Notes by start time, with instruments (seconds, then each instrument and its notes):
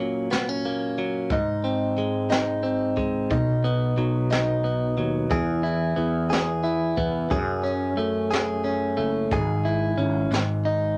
Already playing: clean electric guitar A#2 F#3 A#3 C#4
0.30 clean electric guitar B3, snare, closed hi-hat
0.49 clean electric guitar C#4
0.64 clean electric guitar A#3, closed hi-hat
0.97 clean electric guitar F#3, closed hi-hat
1.30 clean electric guitar G#2 D#4, kick, closed hi-hat
1.64 clean electric guitar C4, closed hi-hat
1.97 clean electric guitar G#3, closed hi-hat
2.29 clean electric guitar D#4, snare, closed hi-hat
2.63 clean electric guitar C4, closed hi-hat
2.97 clean electric guitar G#3, kick, closed hi-hat
3.30 fretless electric bass B1, clean electric guitar B2 D#4, kick, closed hi-hat
3.64 clean electric guitar B3, closed hi-hat
3.97 fretless electric bass B1, clean electric guitar F#3, closed hi-hat
4.30 clean electric guitar D#4, snare, closed hi-hat
4.64 clean electric guitar B3, closed hi-hat
4.97 fretless electric bass D#2, clean electric guitar F#3, closed hi-hat
5.30 fretless electric bass E2, clean electric guitar E3 G#4, kick, closed hi-hat
5.63 clean electric guitar E4, closed hi-hat
5.96 fretless electric bass E2, clean electric guitar B3, closed hi-hat
6.30 clean electric guitar G#4, snare, closed hi-hat
6.64 clean electric guitar E4, closed hi-hat
6.97 fretless electric bass E2, clean electric guitar B3, kick, closed hi-hat
7.30 clean electric guitar F#2 G#4, fretless electric bass F#2, kick, closed hi-hat
7.64 clean electric guitar C#4, closed hi-hat
7.97 fretless electric bass F#2, clean electric guitar A3, closed hi-hat
8.31 clean electric guitar G#4, snare, closed hi-hat
8.64 clean electric guitar C#4, closed hi-hat
8.97 fretless electric bass F#1, clean electric guitar A3, closed hi-hat
9.31 fretless electric bass G#1, clean electric guitar G#2 G#4, kick, closed hi-hat
9.65 clean electric guitar E4, closed hi-hat
9.98 fretless electric bass G#1, clean electric guitar C#4, closed hi-hat
10.31 fretless electric bass G#1, clean electric guitar G#2, snare, closed hi-hat
10.65 clean electric guitar D#4, closed hi-hat